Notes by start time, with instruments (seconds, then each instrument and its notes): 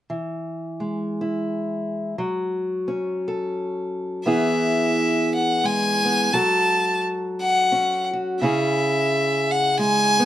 0.10 steel-string acoustic guitar E3
0.80 steel-string acoustic guitar G#3
1.21 steel-string acoustic guitar E4
2.18 steel-string acoustic guitar F#3
2.88 steel-string acoustic guitar C#4
3.28 steel-string acoustic guitar A4
4.25 steel-string acoustic guitar E3 B3 E4 G#4, fiddle E5
5.35 fiddle F#5
5.64 steel-string acoustic guitar G#3, fiddle G#5
6.04 steel-string acoustic guitar B3
6.33 steel-string acoustic guitar F#3 F#4 A4, fiddle A5
7.41 fiddle F#5
7.72 steel-string acoustic guitar C#4
8.13 steel-string acoustic guitar F#4
8.41 steel-string acoustic guitar C#3 C#4 E4 G#4, fiddle E5
9.51 fiddle F#5
9.79 steel-string acoustic guitar G#3, fiddle G#5
10.19 steel-string acoustic guitar B3